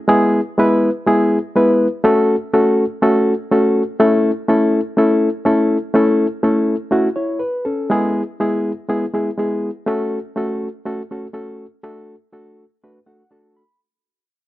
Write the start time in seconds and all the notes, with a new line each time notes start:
0.08 G#3 B3 E4 G#4
0.58 G#3 B3 E4 B4
1.07 G#3 B3 E4 G#4
1.56 G#3 B3 E4 B4
2.04 A3 C#4 F#4 A4
2.53 A3 C#4 F#4 A4
3.02 A3 C#4 F#4 A4
3.51 A3 C#4 F#4 A4
4.00 A3 C#4 E4 A4
4.49 A3 C#4 E4 A4
4.97 A3 C#4 E4 A4
5.45 A3 C#4 E4 A4
5.94 A3 C#4 E4 A4
6.43 A3 C#4 E4 A4
6.91 A3 C#4 E4 F#4
7.16 E4 C#5
7.39 B4
7.65 C#4 A4
7.90 G#3 B3 E4 G#4
8.40 G#3 B3 E4 G#4
8.89 G#3 B3 E4 G#4
9.14 G#3 B3 E4 G#4
9.38 G#3 B3 E4 G#4
9.86 A3 C#4 F#4 A4
10.36 A3 C#4 F#4 A4
10.85 A3 C#4 F#4 A4
11.11 A3 C#4 F#4 A4
11.33 A3 C#4 F#4 A4
11.83 A3 D4 F#4 A4
12.32 A3 D4 F#4 A4
12.83 A3 D4 F#4 B4
13.06 A3 D4 F#4 A4 F#5
13.31 A3 D4 F#4 A4 A5
13.57 B5